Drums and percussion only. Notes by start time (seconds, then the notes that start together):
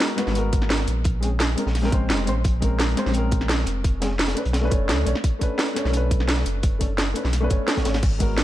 0.00 snare, closed hi-hat
0.09 closed hi-hat
0.18 snare, closed hi-hat
0.27 snare
0.35 closed hi-hat
0.53 kick, closed hi-hat
0.62 snare
0.70 snare, closed hi-hat
0.79 snare
0.87 closed hi-hat
1.04 kick, closed hi-hat
1.23 closed hi-hat
1.40 snare, closed hi-hat
1.58 closed hi-hat
1.67 snare
1.75 snare, closed hi-hat, open hi-hat
1.84 snare
1.92 kick, closed hi-hat
2.10 snare, closed hi-hat
2.27 closed hi-hat
2.44 kick, closed hi-hat
2.62 kick, closed hi-hat
2.79 snare, closed hi-hat
2.89 closed hi-hat
2.97 snare, closed hi-hat
3.06 snare
3.14 closed hi-hat
3.31 kick, closed hi-hat
3.41 snare
3.49 snare, closed hi-hat
3.59 snare
3.67 closed hi-hat
3.84 kick, closed hi-hat
4.02 snare, closed hi-hat
4.19 snare, closed hi-hat
4.28 snare, closed hi-hat
4.37 closed hi-hat
4.45 closed hi-hat
4.53 snare, closed hi-hat
4.71 kick, closed hi-hat
4.89 snare, closed hi-hat
5.07 closed hi-hat
5.15 snare
5.24 kick, closed hi-hat
5.41 kick, closed hi-hat
5.58 snare, closed hi-hat
5.68 closed hi-hat
5.76 snare, closed hi-hat
5.85 snare
5.93 closed hi-hat
6.11 kick, closed hi-hat
6.20 snare
6.28 snare, closed hi-hat
6.37 snare
6.46 closed hi-hat
6.63 kick, closed hi-hat
6.81 kick, closed hi-hat
6.98 snare, closed hi-hat
7.15 closed hi-hat
7.25 snare
7.33 snare, closed hi-hat
7.50 kick, closed hi-hat
7.68 snare, closed hi-hat
7.77 kick, snare, closed hi-hat
7.85 snare, closed hi-hat
7.94 snare, closed hi-hat
8.03 kick, closed hi-hat, crash
8.20 kick, closed hi-hat
8.38 snare, closed hi-hat